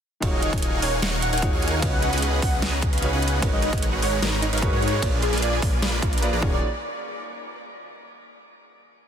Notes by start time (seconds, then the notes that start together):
0.20 D#1 D#3 D#4 F4 F#4 G#4 A#4 C#5 F5 F#5 G#5, kick, closed hi-hat, ride
0.33 D#5
0.42 D#5, closed hi-hat
0.53 D#1 A#4, kick, closed hi-hat
0.58 closed hi-hat
0.62 closed hi-hat
0.82 D#1 D#4 A#4 C#5 F5 F#5 G#5, open hi-hat
1.02 D#1 D#4 A#4 C#5 F5 F#5 C#6, snare, closed hi-hat
1.22 F#5, closed hi-hat
1.33 D#1 D#4 A#4 C#5 F5 F#5 G#5, closed hi-hat
1.38 D#3, closed hi-hat
1.42 D#4 F4 F#4 G#4 C#5, kick, closed hi-hat
1.53 D#2 D#4 A#4 C#5 F5 F#5 G#5
1.62 closed hi-hat
1.68 closed hi-hat
1.80 C#2 C#3 B3 C#4 D#4 F#4 G#4 B4 C#5 D#5, kick, closed hi-hat, ride
1.93 F#5
2.02 F#5, closed hi-hat
2.13 C#2 C#4 G#4 B4 D#5 F#5, closed hi-hat
2.18 closed hi-hat
2.22 closed hi-hat
2.42 C#2 C#4 G#4 B4 D#5 F#5, kick, open hi-hat
2.62 C#2 C#4 G#4 B4 D#5 A#5, snare, closed hi-hat
2.82 kick, closed hi-hat
2.93 C#2 C#4 G#4 B4 D#5 F5, closed hi-hat
2.98 C#3, closed hi-hat
3.02 B3 D#4 F#4 C#5, closed hi-hat
3.13 C#2 C#4 G#4 B4 D#5 F#5
3.22 closed hi-hat
3.28 closed hi-hat
3.40 G#1 G#3 C#4 D#4 F#4 A#4 B4 C#5, kick, closed hi-hat, ride
3.53 D#5
3.62 D#4 D#5, closed hi-hat
3.73 G#1 A#4 B4, kick, closed hi-hat
3.78 closed hi-hat
3.82 C#5, closed hi-hat
3.93 F#4
4.02 G#1 G#3 D#4 A#4 B4 C#5 F#5, open hi-hat
4.13 G#4
4.22 G#1 G#3 D#4 F#4 A#4 B4 C#5 A#5, snare, closed hi-hat
4.42 D#4, closed hi-hat
4.53 G#1 G#3 D#4 A#4 B4 C#5 F5, closed hi-hat
4.58 G#3, closed hi-hat
4.62 D#4 F#4 A#4 B4 C#5, kick, closed hi-hat
4.73 G#2 G#3 D#4 F#4 A#4 B4 C#5 F#5
4.82 closed hi-hat
4.88 closed hi-hat
4.93 G#4
5.00 A#1 A#3 D4 F4 G#4 B4 D5, kick, closed hi-hat, ride
5.04 D5
5.22 F4 G#4, closed hi-hat
5.33 A#1 A#3 F4 B4 D5 G#5, snare, closed hi-hat
5.38 closed hi-hat
5.42 D5 F5, closed hi-hat
5.53 G#4
5.62 A#1 A#3 F4 B4 D5, kick, open hi-hat
5.73 A#4
5.82 A#1 A#3 F4 G#4 B4 D5 B5, snare, closed hi-hat
6.02 A#1 A#3 F4 B4 D5 A#5, kick, closed hi-hat
6.13 closed hi-hat
6.18 A#3, closed hi-hat
6.22 F4 G#4 B4 D5, closed hi-hat
6.33 A#1 A#3 F4 G#4 B4 D5 A#5
6.39 D#1 D#3 A#3 C#4 D#4 F4 F#4 A#4 F#5 G#5, kick
6.44 G#4 C#5
6.53 D5